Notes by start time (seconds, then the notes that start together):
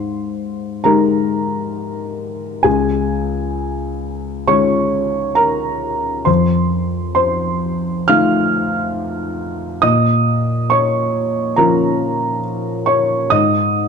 Already playing: G#2 C5 C6
0.84 G#3 D#4 G4 A#4 A#5
2.63 C#2 G#4 G#5
4.47 G#3 C#4 F4 C#5 C#6
5.35 A#4 A#5
6.25 F2 C5 C6
7.15 C5 C6
8.08 A3 D#4 F4 F5 F6
9.82 A#2 D#5 D#6
10.70 C#5 C#6
11.56 F3 C#4 F4 A#4 A#5
12.86 C#5 C#6
13.30 G#2 D#5 D#6